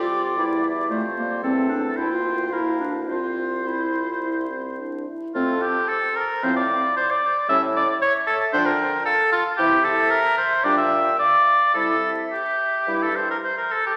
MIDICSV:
0, 0, Header, 1, 6, 480
1, 0, Start_track
1, 0, Key_signature, -1, "major"
1, 0, Tempo, 529568
1, 823, Time_signature, 4, 2, 24, 8
1, 1789, Tempo, 560748
1, 5149, Tempo, 529101
1, 9949, Tempo, 562852
1, 12319, End_track
2, 0, Start_track
2, 0, Title_t, "Flute"
2, 0, Program_c, 0, 73
2, 0, Note_on_c, 0, 79, 58
2, 333, Note_off_c, 0, 79, 0
2, 339, Note_on_c, 0, 79, 67
2, 577, Note_on_c, 0, 76, 60
2, 590, Note_off_c, 0, 79, 0
2, 808, Note_on_c, 0, 74, 58
2, 822, Note_off_c, 0, 76, 0
2, 1299, Note_on_c, 0, 72, 60
2, 1313, Note_off_c, 0, 74, 0
2, 1774, Note_off_c, 0, 72, 0
2, 1780, Note_on_c, 0, 79, 49
2, 2248, Note_on_c, 0, 77, 55
2, 2261, Note_off_c, 0, 79, 0
2, 2741, Note_on_c, 0, 72, 48
2, 2754, Note_off_c, 0, 77, 0
2, 4442, Note_off_c, 0, 72, 0
2, 4680, Note_on_c, 0, 69, 68
2, 5115, Note_off_c, 0, 69, 0
2, 5142, Note_on_c, 0, 72, 62
2, 5630, Note_on_c, 0, 77, 70
2, 5644, Note_off_c, 0, 72, 0
2, 6106, Note_on_c, 0, 74, 83
2, 6119, Note_off_c, 0, 77, 0
2, 6581, Note_on_c, 0, 73, 72
2, 6595, Note_off_c, 0, 74, 0
2, 7064, Note_off_c, 0, 73, 0
2, 7068, Note_on_c, 0, 76, 87
2, 7543, Note_on_c, 0, 79, 101
2, 7557, Note_off_c, 0, 76, 0
2, 8020, Note_on_c, 0, 77, 83
2, 8033, Note_off_c, 0, 79, 0
2, 8495, Note_off_c, 0, 77, 0
2, 8501, Note_on_c, 0, 76, 110
2, 9465, Note_on_c, 0, 79, 87
2, 9479, Note_off_c, 0, 76, 0
2, 9944, Note_off_c, 0, 79, 0
2, 9949, Note_on_c, 0, 77, 88
2, 10432, Note_on_c, 0, 76, 75
2, 10444, Note_off_c, 0, 77, 0
2, 12113, Note_off_c, 0, 76, 0
2, 12319, End_track
3, 0, Start_track
3, 0, Title_t, "Oboe"
3, 0, Program_c, 1, 68
3, 0, Note_on_c, 1, 74, 73
3, 816, Note_off_c, 1, 74, 0
3, 822, Note_on_c, 1, 72, 60
3, 1290, Note_off_c, 1, 72, 0
3, 1296, Note_on_c, 1, 69, 61
3, 1781, Note_on_c, 1, 72, 57
3, 1794, Note_off_c, 1, 69, 0
3, 2264, Note_on_c, 1, 70, 49
3, 2276, Note_off_c, 1, 72, 0
3, 2575, Note_off_c, 1, 70, 0
3, 2737, Note_on_c, 1, 72, 52
3, 4406, Note_off_c, 1, 72, 0
3, 4676, Note_on_c, 1, 65, 75
3, 4905, Note_on_c, 1, 67, 87
3, 4918, Note_off_c, 1, 65, 0
3, 5138, Note_on_c, 1, 69, 82
3, 5150, Note_off_c, 1, 67, 0
3, 5386, Note_on_c, 1, 70, 80
3, 5399, Note_off_c, 1, 69, 0
3, 5636, Note_on_c, 1, 72, 87
3, 5650, Note_off_c, 1, 70, 0
3, 5746, Note_off_c, 1, 72, 0
3, 5751, Note_on_c, 1, 74, 96
3, 6108, Note_off_c, 1, 74, 0
3, 6116, Note_on_c, 1, 72, 100
3, 6242, Note_on_c, 1, 74, 94
3, 6256, Note_off_c, 1, 72, 0
3, 6588, Note_off_c, 1, 74, 0
3, 6593, Note_on_c, 1, 76, 107
3, 6701, Note_off_c, 1, 76, 0
3, 6840, Note_on_c, 1, 74, 101
3, 6946, Note_off_c, 1, 74, 0
3, 7070, Note_on_c, 1, 73, 112
3, 7177, Note_off_c, 1, 73, 0
3, 7299, Note_on_c, 1, 69, 94
3, 7407, Note_off_c, 1, 69, 0
3, 7537, Note_on_c, 1, 72, 107
3, 7650, Note_on_c, 1, 70, 92
3, 7663, Note_off_c, 1, 72, 0
3, 8007, Note_off_c, 1, 70, 0
3, 8013, Note_on_c, 1, 69, 100
3, 8248, Note_off_c, 1, 69, 0
3, 8254, Note_on_c, 1, 65, 99
3, 8362, Note_off_c, 1, 65, 0
3, 8483, Note_on_c, 1, 67, 108
3, 8730, Note_on_c, 1, 69, 97
3, 8743, Note_off_c, 1, 67, 0
3, 8964, Note_on_c, 1, 70, 114
3, 8977, Note_off_c, 1, 69, 0
3, 9205, Note_off_c, 1, 70, 0
3, 9210, Note_on_c, 1, 72, 98
3, 9449, Note_on_c, 1, 74, 108
3, 9462, Note_off_c, 1, 72, 0
3, 9566, Note_off_c, 1, 74, 0
3, 9572, Note_on_c, 1, 76, 100
3, 9938, Note_off_c, 1, 76, 0
3, 9950, Note_on_c, 1, 74, 111
3, 10414, Note_off_c, 1, 74, 0
3, 10420, Note_on_c, 1, 69, 89
3, 10734, Note_off_c, 1, 69, 0
3, 10912, Note_on_c, 1, 67, 78
3, 11515, Note_on_c, 1, 69, 75
3, 11528, Note_off_c, 1, 67, 0
3, 11627, Note_on_c, 1, 72, 84
3, 11640, Note_off_c, 1, 69, 0
3, 11749, Note_off_c, 1, 72, 0
3, 11754, Note_on_c, 1, 70, 68
3, 11807, Note_off_c, 1, 70, 0
3, 11863, Note_on_c, 1, 72, 86
3, 11979, Note_off_c, 1, 72, 0
3, 11984, Note_on_c, 1, 70, 72
3, 12100, Note_on_c, 1, 69, 85
3, 12113, Note_off_c, 1, 70, 0
3, 12223, Note_off_c, 1, 69, 0
3, 12228, Note_on_c, 1, 67, 73
3, 12282, Note_off_c, 1, 67, 0
3, 12319, End_track
4, 0, Start_track
4, 0, Title_t, "Clarinet"
4, 0, Program_c, 2, 71
4, 0, Note_on_c, 2, 65, 86
4, 341, Note_off_c, 2, 65, 0
4, 352, Note_on_c, 2, 64, 79
4, 582, Note_off_c, 2, 64, 0
4, 820, Note_on_c, 2, 57, 72
4, 928, Note_off_c, 2, 57, 0
4, 1066, Note_on_c, 2, 58, 70
4, 1293, Note_off_c, 2, 58, 0
4, 1298, Note_on_c, 2, 60, 75
4, 1529, Note_off_c, 2, 60, 0
4, 1534, Note_on_c, 2, 62, 68
4, 1647, Note_off_c, 2, 62, 0
4, 1786, Note_on_c, 2, 64, 77
4, 1903, Note_off_c, 2, 64, 0
4, 1907, Note_on_c, 2, 65, 76
4, 2261, Note_on_c, 2, 64, 74
4, 2273, Note_off_c, 2, 65, 0
4, 2493, Note_off_c, 2, 64, 0
4, 2498, Note_on_c, 2, 62, 64
4, 2608, Note_off_c, 2, 62, 0
4, 2740, Note_on_c, 2, 65, 71
4, 3236, Note_on_c, 2, 64, 55
4, 3249, Note_off_c, 2, 65, 0
4, 4203, Note_off_c, 2, 64, 0
4, 4683, Note_on_c, 2, 60, 63
4, 4846, Note_off_c, 2, 60, 0
4, 5635, Note_on_c, 2, 60, 68
4, 5804, Note_off_c, 2, 60, 0
4, 6598, Note_on_c, 2, 61, 63
4, 6764, Note_off_c, 2, 61, 0
4, 7542, Note_on_c, 2, 62, 92
4, 7706, Note_off_c, 2, 62, 0
4, 8499, Note_on_c, 2, 64, 74
4, 8664, Note_off_c, 2, 64, 0
4, 9458, Note_on_c, 2, 62, 82
4, 9628, Note_off_c, 2, 62, 0
4, 10429, Note_on_c, 2, 64, 68
4, 10598, Note_off_c, 2, 64, 0
4, 11395, Note_on_c, 2, 64, 61
4, 11561, Note_off_c, 2, 64, 0
4, 12319, End_track
5, 0, Start_track
5, 0, Title_t, "French horn"
5, 0, Program_c, 3, 60
5, 0, Note_on_c, 3, 55, 65
5, 339, Note_off_c, 3, 55, 0
5, 345, Note_on_c, 3, 55, 69
5, 1281, Note_off_c, 3, 55, 0
5, 1299, Note_on_c, 3, 57, 60
5, 1796, Note_on_c, 3, 58, 54
5, 1809, Note_off_c, 3, 57, 0
5, 2253, Note_off_c, 3, 58, 0
5, 2258, Note_on_c, 3, 58, 47
5, 2737, Note_on_c, 3, 60, 48
5, 2750, Note_off_c, 3, 58, 0
5, 3181, Note_off_c, 3, 60, 0
5, 3223, Note_on_c, 3, 60, 52
5, 3334, Note_off_c, 3, 60, 0
5, 3473, Note_on_c, 3, 65, 53
5, 3715, Note_on_c, 3, 64, 45
5, 3727, Note_off_c, 3, 65, 0
5, 3957, Note_on_c, 3, 60, 48
5, 3970, Note_off_c, 3, 64, 0
5, 4200, Note_on_c, 3, 62, 50
5, 4213, Note_off_c, 3, 60, 0
5, 4444, Note_on_c, 3, 64, 49
5, 4457, Note_off_c, 3, 62, 0
5, 4674, Note_off_c, 3, 64, 0
5, 4679, Note_on_c, 3, 57, 66
5, 4844, Note_off_c, 3, 57, 0
5, 5632, Note_on_c, 3, 53, 66
5, 5802, Note_off_c, 3, 53, 0
5, 6584, Note_on_c, 3, 55, 73
5, 6754, Note_off_c, 3, 55, 0
5, 7544, Note_on_c, 3, 53, 85
5, 7708, Note_off_c, 3, 53, 0
5, 8497, Note_on_c, 3, 52, 76
5, 8663, Note_off_c, 3, 52, 0
5, 9456, Note_on_c, 3, 55, 78
5, 9627, Note_off_c, 3, 55, 0
5, 10424, Note_on_c, 3, 55, 70
5, 10595, Note_off_c, 3, 55, 0
5, 11393, Note_on_c, 3, 55, 61
5, 11560, Note_off_c, 3, 55, 0
5, 12319, End_track
6, 0, Start_track
6, 0, Title_t, "Bassoon"
6, 0, Program_c, 4, 70
6, 0, Note_on_c, 4, 48, 74
6, 314, Note_off_c, 4, 48, 0
6, 341, Note_on_c, 4, 40, 61
6, 817, Note_on_c, 4, 41, 68
6, 831, Note_off_c, 4, 40, 0
6, 1292, Note_on_c, 4, 40, 61
6, 1306, Note_off_c, 4, 41, 0
6, 1778, Note_off_c, 4, 40, 0
6, 1783, Note_on_c, 4, 38, 50
6, 2723, Note_off_c, 4, 38, 0
6, 2741, Note_on_c, 4, 36, 55
6, 4408, Note_off_c, 4, 36, 0
6, 4676, Note_on_c, 4, 41, 75
6, 5068, Note_off_c, 4, 41, 0
6, 5631, Note_on_c, 4, 45, 72
6, 6036, Note_off_c, 4, 45, 0
6, 6596, Note_on_c, 4, 45, 93
6, 6992, Note_off_c, 4, 45, 0
6, 7539, Note_on_c, 4, 50, 95
6, 7935, Note_off_c, 4, 50, 0
6, 8495, Note_on_c, 4, 48, 91
6, 8894, Note_off_c, 4, 48, 0
6, 9459, Note_on_c, 4, 46, 78
6, 9867, Note_off_c, 4, 46, 0
6, 10422, Note_on_c, 4, 48, 70
6, 10830, Note_off_c, 4, 48, 0
6, 11385, Note_on_c, 4, 43, 68
6, 11786, Note_off_c, 4, 43, 0
6, 12319, End_track
0, 0, End_of_file